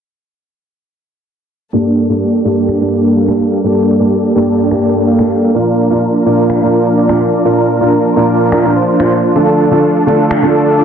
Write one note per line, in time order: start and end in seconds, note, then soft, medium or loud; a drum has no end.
1.73 2.06 G2 medium
1.73 5.51 G3 medium
1.73 2.06 A#3 medium
1.73 9.32 A#3 medium
1.73 2.07 A#3 medium
1.73 2.07 D4 medium
1.73 10.85 D4 medium
1.73 2.07 D4 medium
1.73 2.07 G4 medium
1.73 2.07 A4 medium
1.73 5.51 A4 medium
1.73 2.07 A4 medium
1.73 2.07 D5 medium
2.09 2.19 G2 medium
2.09 2.19 A#3 medium
2.09 2.42 A#3 medium
2.09 2.42 D4 medium
2.09 2.19 D4 medium
2.09 2.42 G4 medium
2.09 2.19 G4 medium
2.09 2.42 A4 medium
2.09 2.19 A4 medium
2.09 2.42 D5 medium
2.45 2.78 G2 medium
2.45 2.78 A#3 medium
2.45 2.78 D4 medium
2.45 2.78 G4 medium
2.45 2.78 A4 medium
2.45 2.78 D5 loud
2.69 finger snap medium
2.80 3.25 G2 medium
2.80 3.25 A#3 medium
2.80 3.14 A#3 medium
2.80 3.14 D4 medium
2.80 3.26 D4 medium
2.80 3.14 G4 medium
2.80 3.26 G4 medium
2.80 3.14 A4 medium
2.80 3.26 A4 medium
2.80 3.14 D5 loud
3.17 3.61 A#3 medium
3.17 3.61 D4 medium
3.17 3.61 G4 medium
3.17 3.61 A4 medium
3.17 3.61 F5 medium
3.28 3.38 G2 medium
3.28 3.38 A#3 medium
3.28 3.38 D4 medium
3.28 3.38 G4 medium
3.28 3.39 A4 medium
3.28 finger snap medium
3.64 3.97 G2 medium
3.64 3.97 A#3 medium
3.64 3.97 D4 medium
3.64 3.97 G4 medium
3.64 3.97 A4 medium
3.64 3.97 D5 loud
3.99 4.09 G2 medium
3.99 4.10 A#3 medium
3.99 4.33 A#3 medium
3.99 4.33 D4 medium
3.99 4.10 D4 medium
3.99 4.33 G4 medium
3.99 4.10 G4 medium
3.99 4.33 A4 medium
3.99 4.10 A4 medium
3.99 4.33 D5 medium
4.35 4.68 G2 medium
4.35 4.68 A#3 medium
4.35 4.68 D4 medium
4.35 4.68 G4 medium
4.35 4.69 G4 medium
4.35 4.68 A4 medium
4.35 4.69 A4 medium
4.35 4.68 D5 loud
4.71 5.16 G2 medium
4.71 5.16 A#3 medium
4.71 5.04 A#3 medium
4.71 5.04 D4 medium
4.71 5.16 D4 medium
4.71 5.04 G4 medium
4.71 5.16 G4 medium
4.71 5.04 A4 medium
4.71 5.16 A4 medium
4.71 5.04 D5 medium
4.71 finger snap medium
5.07 5.52 A#3 medium
5.07 5.52 D4 medium
5.07 5.52 G4 medium
5.07 5.52 A4 medium
5.07 5.52 F5 medium
5.18 5.28 G2 medium
5.18 5.29 A#3 medium
5.18 5.29 D4 medium
5.18 5.29 G4 medium
5.18 5.29 A4 medium
5.18 finger snap medium
5.54 5.87 A#2 medium
5.54 10.85 F3 medium
5.54 5.87 A#3 medium
5.54 5.88 D4 medium
5.54 5.88 F4 medium
5.54 5.88 A#4 loud
5.54 9.32 A#4 medium
5.54 5.88 A#4 medium
5.90 6.00 A#2 medium
5.90 6.00 A#3 medium
5.90 6.23 D4 medium
5.90 6.00 D4 medium
5.90 6.23 F4 medium
5.90 6.00 F4 medium
5.90 6.23 A#4 medium
5.90 6.00 A#4 medium
6.26 6.59 A#2 medium
6.26 6.59 A#3 medium
6.26 6.59 D4 medium
6.26 6.59 F4 medium
6.26 6.59 A#4 loud
6.26 6.59 A#4 medium
6.50 finger snap medium
6.61 7.06 A#2 medium
6.61 7.06 A#3 medium
6.61 6.95 D4 medium
6.61 7.07 D4 medium
6.61 6.95 F4 medium
6.61 7.07 F4 medium
6.61 6.95 A#4 medium
6.61 7.07 A#4 medium
6.97 7.42 D4 medium
6.97 7.42 F4 medium
6.97 7.42 D5 medium
7.09 7.19 A#2 medium
7.09 7.19 A#3 medium
7.09 7.19 D4 medium
7.09 7.19 F4 medium
7.09 7.20 A#4 medium
7.09 finger snap medium
7.45 7.78 A#2 medium
7.45 7.78 A#3 medium
7.45 7.78 D4 medium
7.45 7.78 F4 medium
7.45 7.78 A#4 medium
7.80 7.90 A#2 medium
7.80 7.90 A#3 medium
7.80 8.14 D4 medium
7.80 7.91 D4 medium
7.80 8.14 F4 medium
7.80 7.91 F4 medium
7.80 8.14 A#4 medium
7.80 7.91 A#4 medium
8.16 8.49 A#2 medium
8.16 8.49 A#3 medium
8.16 8.49 D4 medium
8.16 8.49 F4 medium
8.16 8.50 F4 medium
8.16 8.49 A#4 loud
8.16 8.50 A#4 medium
8.52 8.61 A#2 medium
8.52 8.62 A#3 medium
8.52 8.74 D4 medium
8.52 8.62 D4 medium
8.52 8.74 F4 medium
8.52 8.62 F4 medium
8.52 8.74 A#4 loud
8.52 8.62 A#4 medium
8.52 finger snap medium
8.64 8.74 A#2 medium
8.64 8.74 A#3 medium
8.64 8.74 D4 medium
8.64 8.74 F4 medium
8.64 8.74 A#4 medium
8.76 8.85 D4 medium
8.76 8.85 F4 medium
8.76 8.85 C5 loud
8.88 9.33 D4 medium
8.88 9.33 F4 medium
8.88 9.33 C5 medium
8.99 9.15 A#2 medium
8.99 9.15 A#3 medium
8.99 9.16 D4 medium
8.99 9.16 F4 medium
8.99 9.16 C5 medium
8.99 finger snap medium
9.35 9.68 D3 medium
9.35 9.68 A3 medium
9.35 10.85 A3 medium
9.35 9.68 D4 medium
9.35 9.69 D4 medium
9.35 9.68 F4 medium
9.35 9.69 F4 medium
9.35 9.68 A4 loud
9.35 10.85 A4 medium
9.35 9.69 A4 medium
9.71 9.81 D3 medium
9.71 9.81 A3 medium
9.71 10.04 D4 medium
9.71 9.81 D4 medium
9.71 10.04 F4 medium
9.71 9.81 F4 medium
9.71 10.04 A4 medium
9.71 9.81 A4 medium
10.07 10.40 D3 medium
10.07 10.40 A3 medium
10.07 10.40 D4 medium
10.07 10.40 F4 medium
10.07 10.40 A4 loud
10.07 10.40 A4 medium
10.31 finger snap medium
10.42 10.85 D3 medium
10.42 10.85 A3 medium
10.42 10.76 D4 medium
10.42 10.85 D4 medium
10.42 10.76 F4 medium
10.42 10.85 F4 medium
10.42 10.76 A4 loud
10.42 10.85 A4 medium
10.78 10.85 D4 medium
10.78 10.85 F4 medium
10.78 10.85 D5 medium